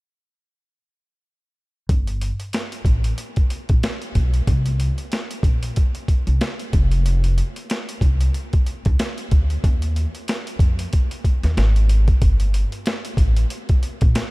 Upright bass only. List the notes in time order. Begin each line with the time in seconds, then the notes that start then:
1.89 G1
2.85 A1
3.69 A#1
4.15 B1
4.47 C2
5.43 A#1
6.27 C2
6.73 F1
8.01 C2
8.86 D2
9.32 D2
9.64 D#2
10.59 F2
11.43 D#2
11.57 G#1
12.22 G1
13.17 A1
14.02 A#1